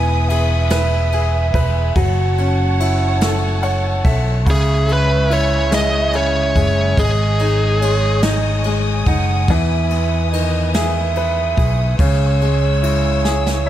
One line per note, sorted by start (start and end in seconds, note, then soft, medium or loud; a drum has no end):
0.00 1.50 E1 loud
0.00 1.92 E3 medium
0.00 1.51 B3 medium
0.00 1.93 B4 medium
0.00 1.93 E5 medium
0.00 0.30 G#5 loud
0.00 1.91 G#5 medium
0.00 1.93 D#6 medium
0.29 1.12 G#4 medium
0.29 1.97 E5 loud
0.29 ride medium
0.70 1.53 B4 medium
0.70 snare loud
0.70 ride medium
1.12 1.94 G#4 medium
1.12 ride soft
1.54 1.93 E1 medium
1.54 1.95 B4 medium
1.54 kick medium
1.54 ride medium
1.96 4.01 F#1 loud
1.96 4.43 F#3 medium
1.96 4.44 C#5 medium
1.96 4.05 F#5 medium
1.96 4.44 F#5 medium
1.96 4.44 A5 medium
1.96 kick loud
1.96 ride medium
2.38 4.01 C#4 medium
2.38 ride soft
2.80 4.43 E4 medium
2.80 ride medium
3.21 4.03 A4 medium
3.21 snare loud
3.21 ride medium
3.62 4.44 C#5 medium
3.62 4.02 F#5 medium
3.62 ride soft
4.04 4.47 B1 medium
4.04 4.45 A4 medium
4.04 4.43 E5 medium
4.04 kick medium
4.04 ride medium
4.46 6.52 C#2 loud
4.46 6.12 C#3 medium
4.46 6.95 E4 medium
4.46 6.94 C#5 medium
4.46 6.99 E5 medium
4.46 4.50 F#5 medium
4.46 13.70 G#5 medium
4.46 kick loud
4.46 ride medium
4.51 4.92 G#4 medium
4.87 5.69 G#3 soft
4.87 ride soft
4.93 5.34 B4 medium
5.30 6.93 E4 soft
5.30 5.71 C#5 medium
5.30 ride medium
5.71 6.54 G#3 medium
5.71 6.16 D#5 medium
5.71 snare loud
5.71 ride medium
6.13 6.95 C#3 medium
6.13 7.01 C#5 loud
6.13 ride soft
6.55 6.95 F#1 medium
6.55 6.96 G#3 medium
6.55 kick loud
6.55 ride medium
6.96 9.02 G#1 loud
6.96 7.81 G#3 medium
6.96 8.20 G#4 medium
6.96 9.45 C#5 medium
6.96 9.45 D#5 medium
6.96 7.82 D#5 medium
6.96 11.94 D#6 medium
6.96 kick loud
6.96 ride medium
7.39 8.22 D#4 medium
7.39 ride soft
7.81 8.64 G#3 medium
7.81 8.24 C#5 medium
7.81 ride medium
8.22 9.06 D#4 medium
8.22 8.79 D#5 loud
8.22 snare loud
8.22 ride medium
8.64 9.46 G#3 medium
8.64 ride soft
9.06 9.46 F#1 medium
9.06 9.47 D#4 medium
9.06 9.48 F#5 loud
9.06 kick medium
9.06 ride medium
9.48 11.53 E2 loud
9.48 11.96 E3 medium
9.48 11.96 B4 medium
9.48 10.31 E5 medium
9.48 9.52 F#5 medium
9.48 kick loud
9.48 ride medium
9.90 11.54 B3 soft
9.90 ride soft
10.31 11.95 D#3 soft
10.31 10.70 D#5 medium
10.31 ride medium
10.74 11.56 G#4 medium
10.74 11.95 E5 loud
10.74 snare medium
10.74 ride medium
11.15 11.97 B4 medium
11.15 ride soft
11.57 11.96 B1 medium
11.57 11.98 G#4 medium
11.57 kick medium
11.57 ride medium
11.98 13.70 C#2 loud
11.98 13.70 C#3 medium
11.98 13.70 C#5 medium
11.98 13.70 E6 medium
11.98 kick loud
11.98 ride medium
12.41 13.70 G#3 medium
12.41 ride soft
12.82 13.70 E4 soft
12.82 ride medium
13.24 13.70 G#4 medium
13.24 snare medium
13.47 snare medium
13.66 13.70 C#5 medium
13.66 13.70 E5 medium